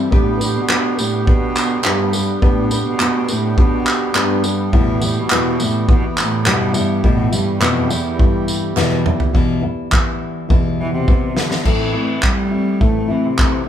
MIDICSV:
0, 0, Header, 1, 5, 480
1, 0, Start_track
1, 0, Tempo, 576923
1, 98, Time_signature, 4, 2, 24, 8
1, 11387, End_track
2, 0, Start_track
2, 0, Title_t, "Nylon-string guitar"
2, 0, Program_c, 0, 24
2, 0, Note_on_c, 0, 55, 50
2, 0, Note_on_c, 0, 60, 45
2, 0, Note_on_c, 0, 64, 60
2, 90, Note_on_c, 0, 59, 75
2, 94, Note_off_c, 0, 55, 0
2, 97, Note_on_c, 0, 62, 73
2, 98, Note_off_c, 0, 64, 0
2, 99, Note_off_c, 0, 60, 0
2, 102, Note_on_c, 0, 67, 89
2, 108, Note_on_c, 0, 71, 91
2, 317, Note_off_c, 0, 71, 0
2, 327, Note_on_c, 0, 71, 56
2, 333, Note_off_c, 0, 67, 0
2, 334, Note_off_c, 0, 59, 0
2, 338, Note_off_c, 0, 62, 0
2, 343, Note_on_c, 0, 67, 43
2, 352, Note_on_c, 0, 62, 45
2, 570, Note_off_c, 0, 62, 0
2, 571, Note_on_c, 0, 59, 83
2, 572, Note_off_c, 0, 71, 0
2, 574, Note_off_c, 0, 67, 0
2, 580, Note_on_c, 0, 62, 82
2, 584, Note_on_c, 0, 67, 79
2, 591, Note_on_c, 0, 71, 90
2, 800, Note_off_c, 0, 71, 0
2, 810, Note_on_c, 0, 71, 53
2, 814, Note_off_c, 0, 67, 0
2, 815, Note_off_c, 0, 59, 0
2, 819, Note_off_c, 0, 62, 0
2, 824, Note_on_c, 0, 67, 47
2, 833, Note_on_c, 0, 62, 41
2, 1045, Note_off_c, 0, 62, 0
2, 1050, Note_on_c, 0, 59, 56
2, 1054, Note_off_c, 0, 67, 0
2, 1054, Note_off_c, 0, 71, 0
2, 1055, Note_on_c, 0, 62, 56
2, 1064, Note_on_c, 0, 67, 56
2, 1074, Note_on_c, 0, 71, 64
2, 1530, Note_off_c, 0, 62, 0
2, 1531, Note_off_c, 0, 59, 0
2, 1534, Note_on_c, 0, 59, 65
2, 1540, Note_on_c, 0, 62, 78
2, 1543, Note_off_c, 0, 67, 0
2, 1547, Note_on_c, 0, 67, 87
2, 1551, Note_off_c, 0, 71, 0
2, 1554, Note_on_c, 0, 71, 98
2, 1762, Note_off_c, 0, 71, 0
2, 1772, Note_on_c, 0, 71, 66
2, 1775, Note_off_c, 0, 67, 0
2, 1776, Note_off_c, 0, 59, 0
2, 1779, Note_off_c, 0, 62, 0
2, 1785, Note_on_c, 0, 67, 55
2, 1798, Note_on_c, 0, 62, 52
2, 2008, Note_off_c, 0, 62, 0
2, 2011, Note_on_c, 0, 59, 83
2, 2013, Note_off_c, 0, 67, 0
2, 2015, Note_off_c, 0, 71, 0
2, 2018, Note_on_c, 0, 62, 89
2, 2023, Note_on_c, 0, 67, 82
2, 2029, Note_on_c, 0, 71, 84
2, 2249, Note_off_c, 0, 71, 0
2, 2255, Note_off_c, 0, 59, 0
2, 2259, Note_off_c, 0, 62, 0
2, 2259, Note_on_c, 0, 71, 49
2, 2261, Note_off_c, 0, 67, 0
2, 2272, Note_on_c, 0, 67, 49
2, 2281, Note_on_c, 0, 62, 39
2, 2493, Note_off_c, 0, 62, 0
2, 2495, Note_on_c, 0, 59, 69
2, 2499, Note_off_c, 0, 71, 0
2, 2501, Note_off_c, 0, 67, 0
2, 2503, Note_on_c, 0, 62, 70
2, 2511, Note_on_c, 0, 67, 76
2, 2513, Note_on_c, 0, 71, 84
2, 2722, Note_off_c, 0, 71, 0
2, 2732, Note_on_c, 0, 71, 57
2, 2737, Note_off_c, 0, 59, 0
2, 2737, Note_off_c, 0, 67, 0
2, 2741, Note_off_c, 0, 62, 0
2, 2747, Note_on_c, 0, 67, 58
2, 2758, Note_on_c, 0, 62, 46
2, 2969, Note_on_c, 0, 59, 55
2, 2970, Note_off_c, 0, 62, 0
2, 2976, Note_off_c, 0, 67, 0
2, 2976, Note_off_c, 0, 71, 0
2, 2980, Note_on_c, 0, 62, 62
2, 2986, Note_on_c, 0, 67, 61
2, 2995, Note_on_c, 0, 71, 60
2, 3446, Note_off_c, 0, 59, 0
2, 3448, Note_off_c, 0, 62, 0
2, 3450, Note_on_c, 0, 59, 78
2, 3457, Note_off_c, 0, 67, 0
2, 3458, Note_on_c, 0, 62, 93
2, 3460, Note_on_c, 0, 67, 89
2, 3462, Note_off_c, 0, 71, 0
2, 3466, Note_on_c, 0, 71, 88
2, 3675, Note_off_c, 0, 71, 0
2, 3685, Note_on_c, 0, 71, 55
2, 3689, Note_off_c, 0, 67, 0
2, 3694, Note_off_c, 0, 59, 0
2, 3699, Note_off_c, 0, 62, 0
2, 3699, Note_on_c, 0, 67, 54
2, 3712, Note_on_c, 0, 62, 48
2, 3932, Note_off_c, 0, 71, 0
2, 3932, Note_on_c, 0, 40, 74
2, 3933, Note_on_c, 0, 47, 78
2, 3939, Note_off_c, 0, 62, 0
2, 3939, Note_off_c, 0, 67, 0
2, 3940, Note_on_c, 0, 52, 90
2, 3942, Note_on_c, 0, 55, 80
2, 3944, Note_on_c, 0, 59, 91
2, 3950, Note_on_c, 0, 64, 89
2, 4161, Note_off_c, 0, 64, 0
2, 4169, Note_off_c, 0, 59, 0
2, 4171, Note_on_c, 0, 64, 50
2, 4175, Note_off_c, 0, 40, 0
2, 4176, Note_off_c, 0, 47, 0
2, 4179, Note_off_c, 0, 52, 0
2, 4179, Note_on_c, 0, 59, 51
2, 4181, Note_off_c, 0, 55, 0
2, 4190, Note_on_c, 0, 55, 48
2, 4194, Note_on_c, 0, 52, 52
2, 4412, Note_off_c, 0, 52, 0
2, 4415, Note_off_c, 0, 64, 0
2, 4415, Note_on_c, 0, 40, 71
2, 4417, Note_off_c, 0, 55, 0
2, 4419, Note_off_c, 0, 59, 0
2, 4421, Note_on_c, 0, 47, 80
2, 4422, Note_on_c, 0, 52, 90
2, 4427, Note_on_c, 0, 55, 91
2, 4428, Note_on_c, 0, 59, 85
2, 4432, Note_on_c, 0, 64, 91
2, 4644, Note_off_c, 0, 64, 0
2, 4653, Note_off_c, 0, 59, 0
2, 4654, Note_on_c, 0, 64, 53
2, 4657, Note_off_c, 0, 40, 0
2, 4659, Note_off_c, 0, 55, 0
2, 4660, Note_off_c, 0, 47, 0
2, 4661, Note_off_c, 0, 52, 0
2, 4663, Note_on_c, 0, 59, 52
2, 4669, Note_on_c, 0, 55, 52
2, 4680, Note_on_c, 0, 52, 47
2, 4880, Note_off_c, 0, 52, 0
2, 4889, Note_off_c, 0, 55, 0
2, 4890, Note_on_c, 0, 52, 53
2, 4896, Note_off_c, 0, 64, 0
2, 4897, Note_off_c, 0, 59, 0
2, 4899, Note_on_c, 0, 55, 56
2, 4907, Note_on_c, 0, 59, 60
2, 4915, Note_on_c, 0, 64, 61
2, 5372, Note_on_c, 0, 40, 79
2, 5376, Note_on_c, 0, 47, 89
2, 5377, Note_off_c, 0, 52, 0
2, 5380, Note_off_c, 0, 55, 0
2, 5380, Note_on_c, 0, 52, 81
2, 5381, Note_off_c, 0, 59, 0
2, 5383, Note_on_c, 0, 55, 72
2, 5384, Note_on_c, 0, 59, 93
2, 5387, Note_off_c, 0, 64, 0
2, 5391, Note_on_c, 0, 64, 89
2, 5600, Note_off_c, 0, 64, 0
2, 5610, Note_off_c, 0, 59, 0
2, 5610, Note_on_c, 0, 64, 59
2, 5616, Note_off_c, 0, 40, 0
2, 5617, Note_off_c, 0, 47, 0
2, 5617, Note_off_c, 0, 55, 0
2, 5619, Note_off_c, 0, 52, 0
2, 5620, Note_on_c, 0, 59, 52
2, 5627, Note_on_c, 0, 55, 50
2, 5635, Note_on_c, 0, 52, 45
2, 5848, Note_off_c, 0, 52, 0
2, 5849, Note_off_c, 0, 55, 0
2, 5850, Note_on_c, 0, 40, 70
2, 5854, Note_off_c, 0, 59, 0
2, 5854, Note_off_c, 0, 64, 0
2, 5854, Note_on_c, 0, 47, 80
2, 5858, Note_on_c, 0, 52, 82
2, 5859, Note_on_c, 0, 55, 83
2, 5864, Note_on_c, 0, 59, 87
2, 5867, Note_on_c, 0, 64, 90
2, 6076, Note_off_c, 0, 64, 0
2, 6086, Note_on_c, 0, 64, 53
2, 6088, Note_off_c, 0, 59, 0
2, 6094, Note_off_c, 0, 40, 0
2, 6096, Note_off_c, 0, 47, 0
2, 6097, Note_off_c, 0, 55, 0
2, 6098, Note_off_c, 0, 52, 0
2, 6098, Note_on_c, 0, 59, 49
2, 6107, Note_on_c, 0, 55, 43
2, 6111, Note_on_c, 0, 52, 48
2, 6323, Note_off_c, 0, 52, 0
2, 6325, Note_on_c, 0, 40, 75
2, 6328, Note_off_c, 0, 55, 0
2, 6330, Note_off_c, 0, 59, 0
2, 6330, Note_on_c, 0, 47, 87
2, 6333, Note_off_c, 0, 64, 0
2, 6333, Note_on_c, 0, 52, 82
2, 6338, Note_on_c, 0, 55, 77
2, 6340, Note_on_c, 0, 59, 93
2, 6345, Note_on_c, 0, 64, 96
2, 6551, Note_off_c, 0, 64, 0
2, 6561, Note_on_c, 0, 64, 61
2, 6563, Note_off_c, 0, 59, 0
2, 6568, Note_off_c, 0, 55, 0
2, 6572, Note_off_c, 0, 40, 0
2, 6573, Note_on_c, 0, 59, 47
2, 6574, Note_off_c, 0, 47, 0
2, 6576, Note_off_c, 0, 52, 0
2, 6578, Note_on_c, 0, 55, 45
2, 6588, Note_on_c, 0, 52, 40
2, 6795, Note_off_c, 0, 52, 0
2, 6805, Note_off_c, 0, 55, 0
2, 6805, Note_on_c, 0, 52, 57
2, 6810, Note_off_c, 0, 64, 0
2, 6814, Note_off_c, 0, 59, 0
2, 6815, Note_on_c, 0, 55, 54
2, 6824, Note_on_c, 0, 59, 54
2, 6830, Note_on_c, 0, 64, 57
2, 7286, Note_on_c, 0, 40, 76
2, 7289, Note_on_c, 0, 47, 88
2, 7293, Note_off_c, 0, 52, 0
2, 7296, Note_on_c, 0, 52, 79
2, 7297, Note_off_c, 0, 55, 0
2, 7298, Note_off_c, 0, 59, 0
2, 7300, Note_on_c, 0, 55, 79
2, 7301, Note_on_c, 0, 59, 84
2, 7303, Note_off_c, 0, 64, 0
2, 7307, Note_on_c, 0, 64, 77
2, 7524, Note_off_c, 0, 64, 0
2, 7532, Note_off_c, 0, 40, 0
2, 7532, Note_off_c, 0, 59, 0
2, 7534, Note_off_c, 0, 47, 0
2, 7534, Note_on_c, 0, 64, 58
2, 7538, Note_off_c, 0, 52, 0
2, 7540, Note_off_c, 0, 55, 0
2, 7542, Note_on_c, 0, 59, 57
2, 7550, Note_on_c, 0, 55, 57
2, 7555, Note_on_c, 0, 52, 51
2, 7765, Note_off_c, 0, 52, 0
2, 7766, Note_on_c, 0, 40, 86
2, 7769, Note_off_c, 0, 55, 0
2, 7771, Note_on_c, 0, 47, 86
2, 7774, Note_off_c, 0, 59, 0
2, 7775, Note_on_c, 0, 52, 95
2, 7777, Note_off_c, 0, 64, 0
2, 7779, Note_on_c, 0, 55, 87
2, 7784, Note_on_c, 0, 59, 82
2, 7786, Note_on_c, 0, 64, 81
2, 8002, Note_off_c, 0, 64, 0
2, 8012, Note_on_c, 0, 64, 48
2, 8013, Note_off_c, 0, 40, 0
2, 8013, Note_off_c, 0, 59, 0
2, 8015, Note_off_c, 0, 47, 0
2, 8017, Note_off_c, 0, 52, 0
2, 8019, Note_off_c, 0, 55, 0
2, 8023, Note_on_c, 0, 59, 41
2, 8030, Note_on_c, 0, 55, 42
2, 8037, Note_on_c, 0, 52, 36
2, 8231, Note_off_c, 0, 52, 0
2, 8241, Note_on_c, 0, 52, 60
2, 8243, Note_off_c, 0, 55, 0
2, 8250, Note_off_c, 0, 59, 0
2, 8253, Note_on_c, 0, 55, 65
2, 8256, Note_off_c, 0, 64, 0
2, 8260, Note_on_c, 0, 59, 66
2, 8268, Note_on_c, 0, 64, 72
2, 8725, Note_on_c, 0, 40, 70
2, 8726, Note_off_c, 0, 55, 0
2, 8729, Note_off_c, 0, 59, 0
2, 8732, Note_off_c, 0, 52, 0
2, 8734, Note_on_c, 0, 47, 70
2, 8735, Note_on_c, 0, 52, 74
2, 8736, Note_on_c, 0, 55, 70
2, 8739, Note_on_c, 0, 59, 78
2, 8743, Note_off_c, 0, 64, 0
2, 8747, Note_on_c, 0, 64, 80
2, 9206, Note_off_c, 0, 52, 0
2, 9209, Note_on_c, 0, 52, 59
2, 9211, Note_off_c, 0, 55, 0
2, 9213, Note_off_c, 0, 40, 0
2, 9216, Note_off_c, 0, 59, 0
2, 9217, Note_off_c, 0, 47, 0
2, 9221, Note_on_c, 0, 55, 62
2, 9226, Note_on_c, 0, 59, 67
2, 9230, Note_off_c, 0, 64, 0
2, 9233, Note_on_c, 0, 64, 65
2, 9442, Note_off_c, 0, 64, 0
2, 9452, Note_on_c, 0, 64, 55
2, 9455, Note_off_c, 0, 52, 0
2, 9455, Note_off_c, 0, 59, 0
2, 9461, Note_off_c, 0, 55, 0
2, 9465, Note_on_c, 0, 59, 50
2, 9472, Note_on_c, 0, 55, 48
2, 9479, Note_on_c, 0, 52, 42
2, 9688, Note_off_c, 0, 52, 0
2, 9692, Note_on_c, 0, 45, 67
2, 9696, Note_off_c, 0, 64, 0
2, 9698, Note_off_c, 0, 55, 0
2, 9698, Note_on_c, 0, 52, 67
2, 9701, Note_off_c, 0, 59, 0
2, 9702, Note_on_c, 0, 57, 76
2, 9704, Note_on_c, 0, 60, 76
2, 9709, Note_on_c, 0, 64, 74
2, 9919, Note_off_c, 0, 64, 0
2, 9929, Note_on_c, 0, 64, 41
2, 9932, Note_off_c, 0, 60, 0
2, 9936, Note_off_c, 0, 45, 0
2, 9939, Note_off_c, 0, 52, 0
2, 9941, Note_off_c, 0, 57, 0
2, 9942, Note_on_c, 0, 60, 41
2, 9953, Note_on_c, 0, 57, 36
2, 10403, Note_off_c, 0, 64, 0
2, 10406, Note_on_c, 0, 64, 44
2, 10415, Note_off_c, 0, 60, 0
2, 10419, Note_off_c, 0, 57, 0
2, 10419, Note_on_c, 0, 60, 36
2, 10429, Note_on_c, 0, 57, 35
2, 10647, Note_off_c, 0, 57, 0
2, 10648, Note_on_c, 0, 45, 50
2, 10653, Note_off_c, 0, 60, 0
2, 10654, Note_off_c, 0, 64, 0
2, 10654, Note_on_c, 0, 52, 60
2, 10657, Note_on_c, 0, 57, 71
2, 10663, Note_on_c, 0, 60, 63
2, 10666, Note_on_c, 0, 64, 68
2, 10873, Note_off_c, 0, 64, 0
2, 10883, Note_on_c, 0, 64, 56
2, 10888, Note_off_c, 0, 60, 0
2, 10895, Note_off_c, 0, 45, 0
2, 10898, Note_off_c, 0, 52, 0
2, 10898, Note_on_c, 0, 60, 51
2, 10899, Note_off_c, 0, 57, 0
2, 10910, Note_on_c, 0, 57, 43
2, 11127, Note_on_c, 0, 52, 57
2, 11129, Note_off_c, 0, 57, 0
2, 11133, Note_off_c, 0, 64, 0
2, 11138, Note_off_c, 0, 60, 0
2, 11139, Note_on_c, 0, 57, 49
2, 11148, Note_on_c, 0, 60, 53
2, 11151, Note_on_c, 0, 64, 59
2, 11359, Note_off_c, 0, 64, 0
2, 11375, Note_off_c, 0, 52, 0
2, 11375, Note_off_c, 0, 60, 0
2, 11381, Note_off_c, 0, 57, 0
2, 11387, End_track
3, 0, Start_track
3, 0, Title_t, "Harmonium"
3, 0, Program_c, 1, 20
3, 0, Note_on_c, 1, 55, 74
3, 112, Note_on_c, 1, 67, 96
3, 113, Note_on_c, 1, 59, 83
3, 114, Note_on_c, 1, 50, 87
3, 3914, Note_off_c, 1, 50, 0
3, 3942, Note_on_c, 1, 52, 89
3, 5833, Note_off_c, 1, 59, 0
3, 5859, Note_on_c, 1, 57, 83
3, 7743, Note_off_c, 1, 55, 0
3, 7747, Note_off_c, 1, 52, 0
3, 7753, Note_off_c, 1, 67, 0
3, 7760, Note_off_c, 1, 57, 0
3, 11387, End_track
4, 0, Start_track
4, 0, Title_t, "Cello"
4, 0, Program_c, 2, 42
4, 110, Note_on_c, 2, 45, 86
4, 468, Note_on_c, 2, 47, 93
4, 481, Note_off_c, 2, 45, 0
4, 833, Note_on_c, 2, 45, 88
4, 845, Note_off_c, 2, 47, 0
4, 1075, Note_on_c, 2, 47, 90
4, 1087, Note_off_c, 2, 45, 0
4, 1547, Note_off_c, 2, 47, 0
4, 1558, Note_on_c, 2, 43, 88
4, 1996, Note_off_c, 2, 43, 0
4, 2036, Note_on_c, 2, 45, 88
4, 2363, Note_off_c, 2, 45, 0
4, 2397, Note_on_c, 2, 47, 99
4, 2760, Note_on_c, 2, 45, 91
4, 2772, Note_off_c, 2, 47, 0
4, 3000, Note_on_c, 2, 47, 91
4, 3013, Note_off_c, 2, 45, 0
4, 3470, Note_off_c, 2, 47, 0
4, 3482, Note_on_c, 2, 43, 89
4, 3951, Note_on_c, 2, 45, 89
4, 3963, Note_off_c, 2, 43, 0
4, 4316, Note_on_c, 2, 47, 94
4, 4328, Note_off_c, 2, 45, 0
4, 4674, Note_on_c, 2, 45, 87
4, 4687, Note_off_c, 2, 47, 0
4, 4907, Note_off_c, 2, 45, 0
4, 4926, Note_on_c, 2, 47, 86
4, 5028, Note_off_c, 2, 47, 0
4, 5164, Note_on_c, 2, 45, 90
4, 5393, Note_on_c, 2, 43, 90
4, 5405, Note_off_c, 2, 45, 0
4, 5878, Note_on_c, 2, 45, 95
4, 5890, Note_off_c, 2, 43, 0
4, 6108, Note_off_c, 2, 45, 0
4, 6114, Note_on_c, 2, 43, 78
4, 6360, Note_on_c, 2, 41, 84
4, 6373, Note_off_c, 2, 43, 0
4, 6594, Note_on_c, 2, 40, 83
4, 6606, Note_off_c, 2, 41, 0
4, 6833, Note_on_c, 2, 43, 73
4, 6845, Note_off_c, 2, 40, 0
4, 7306, Note_off_c, 2, 43, 0
4, 8993, Note_on_c, 2, 52, 91
4, 9098, Note_off_c, 2, 52, 0
4, 9102, Note_on_c, 2, 48, 89
4, 9470, Note_on_c, 2, 50, 82
4, 9482, Note_off_c, 2, 48, 0
4, 9696, Note_off_c, 2, 50, 0
4, 9701, Note_on_c, 2, 52, 81
4, 10184, Note_on_c, 2, 55, 87
4, 10196, Note_off_c, 2, 52, 0
4, 10669, Note_on_c, 2, 57, 82
4, 10681, Note_off_c, 2, 55, 0
4, 10904, Note_on_c, 2, 52, 81
4, 10917, Note_off_c, 2, 57, 0
4, 11028, Note_on_c, 2, 48, 80
4, 11041, Note_off_c, 2, 52, 0
4, 11379, Note_off_c, 2, 48, 0
4, 11387, End_track
5, 0, Start_track
5, 0, Title_t, "Drums"
5, 103, Note_on_c, 9, 36, 108
5, 186, Note_off_c, 9, 36, 0
5, 341, Note_on_c, 9, 54, 58
5, 425, Note_off_c, 9, 54, 0
5, 577, Note_on_c, 9, 39, 71
5, 578, Note_off_c, 9, 39, 0
5, 578, Note_on_c, 9, 39, 105
5, 661, Note_off_c, 9, 39, 0
5, 820, Note_on_c, 9, 54, 61
5, 904, Note_off_c, 9, 54, 0
5, 1060, Note_on_c, 9, 36, 117
5, 1143, Note_off_c, 9, 36, 0
5, 1295, Note_on_c, 9, 54, 66
5, 1301, Note_on_c, 9, 39, 92
5, 1378, Note_off_c, 9, 54, 0
5, 1385, Note_off_c, 9, 39, 0
5, 1532, Note_on_c, 9, 39, 77
5, 1535, Note_off_c, 9, 39, 0
5, 1535, Note_on_c, 9, 39, 127
5, 1618, Note_off_c, 9, 39, 0
5, 1773, Note_on_c, 9, 54, 69
5, 1857, Note_off_c, 9, 54, 0
5, 2016, Note_on_c, 9, 36, 102
5, 2099, Note_off_c, 9, 36, 0
5, 2254, Note_on_c, 9, 54, 63
5, 2337, Note_off_c, 9, 54, 0
5, 2492, Note_on_c, 9, 39, 99
5, 2498, Note_off_c, 9, 39, 0
5, 2498, Note_on_c, 9, 39, 83
5, 2581, Note_off_c, 9, 39, 0
5, 2733, Note_on_c, 9, 54, 63
5, 2816, Note_off_c, 9, 54, 0
5, 2976, Note_on_c, 9, 36, 116
5, 3060, Note_off_c, 9, 36, 0
5, 3211, Note_on_c, 9, 54, 63
5, 3217, Note_on_c, 9, 39, 96
5, 3294, Note_off_c, 9, 54, 0
5, 3301, Note_off_c, 9, 39, 0
5, 3453, Note_on_c, 9, 39, 127
5, 3457, Note_off_c, 9, 39, 0
5, 3457, Note_on_c, 9, 39, 75
5, 3540, Note_off_c, 9, 39, 0
5, 3692, Note_on_c, 9, 54, 61
5, 3775, Note_off_c, 9, 54, 0
5, 3936, Note_on_c, 9, 36, 114
5, 4020, Note_off_c, 9, 36, 0
5, 4173, Note_on_c, 9, 54, 64
5, 4256, Note_off_c, 9, 54, 0
5, 4411, Note_on_c, 9, 39, 111
5, 4422, Note_off_c, 9, 39, 0
5, 4422, Note_on_c, 9, 39, 90
5, 4505, Note_off_c, 9, 39, 0
5, 4657, Note_on_c, 9, 54, 66
5, 4740, Note_off_c, 9, 54, 0
5, 4897, Note_on_c, 9, 36, 118
5, 4981, Note_off_c, 9, 36, 0
5, 5133, Note_on_c, 9, 54, 67
5, 5139, Note_on_c, 9, 39, 97
5, 5216, Note_off_c, 9, 54, 0
5, 5223, Note_off_c, 9, 39, 0
5, 5376, Note_on_c, 9, 39, 127
5, 5382, Note_off_c, 9, 39, 0
5, 5382, Note_on_c, 9, 39, 84
5, 5465, Note_off_c, 9, 39, 0
5, 5610, Note_on_c, 9, 54, 67
5, 5693, Note_off_c, 9, 54, 0
5, 5857, Note_on_c, 9, 36, 95
5, 5940, Note_off_c, 9, 36, 0
5, 6095, Note_on_c, 9, 54, 68
5, 6179, Note_off_c, 9, 54, 0
5, 6333, Note_on_c, 9, 39, 116
5, 6343, Note_off_c, 9, 39, 0
5, 6343, Note_on_c, 9, 39, 76
5, 6426, Note_off_c, 9, 39, 0
5, 6576, Note_on_c, 9, 54, 61
5, 6659, Note_off_c, 9, 54, 0
5, 6818, Note_on_c, 9, 36, 108
5, 6901, Note_off_c, 9, 36, 0
5, 7056, Note_on_c, 9, 54, 66
5, 7139, Note_off_c, 9, 54, 0
5, 7296, Note_on_c, 9, 39, 76
5, 7301, Note_on_c, 9, 38, 70
5, 7379, Note_off_c, 9, 39, 0
5, 7384, Note_off_c, 9, 38, 0
5, 7536, Note_on_c, 9, 45, 98
5, 7620, Note_off_c, 9, 45, 0
5, 7654, Note_on_c, 9, 43, 87
5, 7737, Note_off_c, 9, 43, 0
5, 7777, Note_on_c, 9, 36, 96
5, 7860, Note_off_c, 9, 36, 0
5, 8254, Note_on_c, 9, 39, 102
5, 8258, Note_on_c, 9, 36, 102
5, 8338, Note_off_c, 9, 39, 0
5, 8342, Note_off_c, 9, 36, 0
5, 8738, Note_on_c, 9, 36, 116
5, 8821, Note_off_c, 9, 36, 0
5, 9218, Note_on_c, 9, 36, 111
5, 9301, Note_off_c, 9, 36, 0
5, 9456, Note_on_c, 9, 38, 85
5, 9539, Note_off_c, 9, 38, 0
5, 9576, Note_on_c, 9, 38, 73
5, 9659, Note_off_c, 9, 38, 0
5, 9695, Note_on_c, 9, 49, 78
5, 9697, Note_on_c, 9, 36, 89
5, 9778, Note_off_c, 9, 49, 0
5, 9780, Note_off_c, 9, 36, 0
5, 10173, Note_on_c, 9, 39, 95
5, 10178, Note_on_c, 9, 36, 95
5, 10256, Note_off_c, 9, 39, 0
5, 10261, Note_off_c, 9, 36, 0
5, 10658, Note_on_c, 9, 36, 106
5, 10741, Note_off_c, 9, 36, 0
5, 11137, Note_on_c, 9, 39, 127
5, 11140, Note_on_c, 9, 36, 108
5, 11220, Note_off_c, 9, 39, 0
5, 11223, Note_off_c, 9, 36, 0
5, 11387, End_track
0, 0, End_of_file